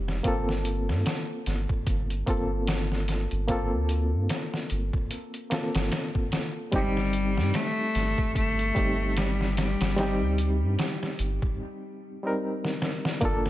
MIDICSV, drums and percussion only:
0, 0, Header, 1, 2, 480
1, 0, Start_track
1, 0, Tempo, 810811
1, 144, Time_signature, 4, 2, 24, 8
1, 7991, End_track
2, 0, Start_track
2, 0, Title_t, "Drums"
2, 49, Note_on_c, 9, 38, 46
2, 108, Note_off_c, 9, 38, 0
2, 144, Note_on_c, 9, 36, 96
2, 144, Note_on_c, 9, 42, 86
2, 203, Note_off_c, 9, 42, 0
2, 204, Note_off_c, 9, 36, 0
2, 289, Note_on_c, 9, 38, 44
2, 348, Note_off_c, 9, 38, 0
2, 385, Note_on_c, 9, 42, 68
2, 444, Note_off_c, 9, 42, 0
2, 528, Note_on_c, 9, 38, 47
2, 587, Note_off_c, 9, 38, 0
2, 626, Note_on_c, 9, 42, 80
2, 631, Note_on_c, 9, 38, 106
2, 685, Note_off_c, 9, 42, 0
2, 690, Note_off_c, 9, 38, 0
2, 866, Note_on_c, 9, 42, 66
2, 871, Note_on_c, 9, 38, 36
2, 925, Note_off_c, 9, 42, 0
2, 930, Note_off_c, 9, 38, 0
2, 1003, Note_on_c, 9, 36, 96
2, 1062, Note_off_c, 9, 36, 0
2, 1105, Note_on_c, 9, 36, 107
2, 1106, Note_on_c, 9, 42, 81
2, 1164, Note_off_c, 9, 36, 0
2, 1165, Note_off_c, 9, 42, 0
2, 1245, Note_on_c, 9, 42, 43
2, 1304, Note_off_c, 9, 42, 0
2, 1345, Note_on_c, 9, 36, 97
2, 1345, Note_on_c, 9, 42, 64
2, 1404, Note_off_c, 9, 36, 0
2, 1404, Note_off_c, 9, 42, 0
2, 1583, Note_on_c, 9, 42, 88
2, 1588, Note_on_c, 9, 38, 109
2, 1643, Note_off_c, 9, 42, 0
2, 1647, Note_off_c, 9, 38, 0
2, 1727, Note_on_c, 9, 38, 35
2, 1786, Note_off_c, 9, 38, 0
2, 1824, Note_on_c, 9, 42, 67
2, 1829, Note_on_c, 9, 38, 39
2, 1883, Note_off_c, 9, 42, 0
2, 1888, Note_off_c, 9, 38, 0
2, 1960, Note_on_c, 9, 42, 38
2, 2020, Note_off_c, 9, 42, 0
2, 2062, Note_on_c, 9, 42, 84
2, 2063, Note_on_c, 9, 36, 107
2, 2122, Note_off_c, 9, 42, 0
2, 2123, Note_off_c, 9, 36, 0
2, 2303, Note_on_c, 9, 42, 69
2, 2362, Note_off_c, 9, 42, 0
2, 2542, Note_on_c, 9, 42, 77
2, 2547, Note_on_c, 9, 38, 103
2, 2602, Note_off_c, 9, 42, 0
2, 2606, Note_off_c, 9, 38, 0
2, 2685, Note_on_c, 9, 38, 50
2, 2744, Note_off_c, 9, 38, 0
2, 2781, Note_on_c, 9, 42, 67
2, 2841, Note_off_c, 9, 42, 0
2, 2921, Note_on_c, 9, 36, 91
2, 2980, Note_off_c, 9, 36, 0
2, 3023, Note_on_c, 9, 42, 81
2, 3082, Note_off_c, 9, 42, 0
2, 3161, Note_on_c, 9, 42, 44
2, 3220, Note_off_c, 9, 42, 0
2, 3262, Note_on_c, 9, 42, 80
2, 3266, Note_on_c, 9, 38, 105
2, 3321, Note_off_c, 9, 42, 0
2, 3326, Note_off_c, 9, 38, 0
2, 3402, Note_on_c, 9, 42, 77
2, 3407, Note_on_c, 9, 38, 102
2, 3461, Note_off_c, 9, 42, 0
2, 3466, Note_off_c, 9, 38, 0
2, 3502, Note_on_c, 9, 42, 79
2, 3507, Note_on_c, 9, 38, 117
2, 3562, Note_off_c, 9, 42, 0
2, 3566, Note_off_c, 9, 38, 0
2, 3641, Note_on_c, 9, 36, 88
2, 3700, Note_off_c, 9, 36, 0
2, 3741, Note_on_c, 9, 42, 71
2, 3746, Note_on_c, 9, 38, 96
2, 3800, Note_off_c, 9, 42, 0
2, 3805, Note_off_c, 9, 38, 0
2, 3980, Note_on_c, 9, 42, 86
2, 3983, Note_on_c, 9, 36, 106
2, 4040, Note_off_c, 9, 42, 0
2, 4042, Note_off_c, 9, 36, 0
2, 4126, Note_on_c, 9, 38, 42
2, 4185, Note_off_c, 9, 38, 0
2, 4222, Note_on_c, 9, 42, 68
2, 4281, Note_off_c, 9, 42, 0
2, 4366, Note_on_c, 9, 38, 50
2, 4425, Note_off_c, 9, 38, 0
2, 4464, Note_on_c, 9, 42, 82
2, 4468, Note_on_c, 9, 38, 104
2, 4523, Note_off_c, 9, 42, 0
2, 4528, Note_off_c, 9, 38, 0
2, 4707, Note_on_c, 9, 42, 64
2, 4711, Note_on_c, 9, 38, 36
2, 4766, Note_off_c, 9, 42, 0
2, 4771, Note_off_c, 9, 38, 0
2, 4843, Note_on_c, 9, 36, 87
2, 4902, Note_off_c, 9, 36, 0
2, 4946, Note_on_c, 9, 36, 98
2, 4948, Note_on_c, 9, 42, 82
2, 5005, Note_off_c, 9, 36, 0
2, 5007, Note_off_c, 9, 42, 0
2, 5085, Note_on_c, 9, 42, 44
2, 5144, Note_off_c, 9, 42, 0
2, 5186, Note_on_c, 9, 36, 95
2, 5188, Note_on_c, 9, 42, 70
2, 5245, Note_off_c, 9, 36, 0
2, 5247, Note_off_c, 9, 42, 0
2, 5427, Note_on_c, 9, 42, 86
2, 5431, Note_on_c, 9, 38, 105
2, 5486, Note_off_c, 9, 42, 0
2, 5491, Note_off_c, 9, 38, 0
2, 5570, Note_on_c, 9, 38, 38
2, 5629, Note_off_c, 9, 38, 0
2, 5667, Note_on_c, 9, 42, 75
2, 5672, Note_on_c, 9, 38, 102
2, 5726, Note_off_c, 9, 42, 0
2, 5731, Note_off_c, 9, 38, 0
2, 5806, Note_on_c, 9, 42, 75
2, 5810, Note_on_c, 9, 38, 97
2, 5865, Note_off_c, 9, 42, 0
2, 5870, Note_off_c, 9, 38, 0
2, 5907, Note_on_c, 9, 42, 73
2, 5912, Note_on_c, 9, 38, 102
2, 5966, Note_off_c, 9, 42, 0
2, 5971, Note_off_c, 9, 38, 0
2, 6147, Note_on_c, 9, 42, 69
2, 6206, Note_off_c, 9, 42, 0
2, 6385, Note_on_c, 9, 42, 81
2, 6390, Note_on_c, 9, 38, 108
2, 6445, Note_off_c, 9, 42, 0
2, 6449, Note_off_c, 9, 38, 0
2, 6528, Note_on_c, 9, 38, 53
2, 6587, Note_off_c, 9, 38, 0
2, 6624, Note_on_c, 9, 42, 67
2, 6683, Note_off_c, 9, 42, 0
2, 6762, Note_on_c, 9, 36, 95
2, 6822, Note_off_c, 9, 36, 0
2, 7486, Note_on_c, 9, 38, 48
2, 7545, Note_off_c, 9, 38, 0
2, 7589, Note_on_c, 9, 38, 75
2, 7648, Note_off_c, 9, 38, 0
2, 7726, Note_on_c, 9, 38, 74
2, 7785, Note_off_c, 9, 38, 0
2, 7822, Note_on_c, 9, 42, 88
2, 7823, Note_on_c, 9, 36, 105
2, 7881, Note_off_c, 9, 42, 0
2, 7882, Note_off_c, 9, 36, 0
2, 7966, Note_on_c, 9, 38, 47
2, 7991, Note_off_c, 9, 38, 0
2, 7991, End_track
0, 0, End_of_file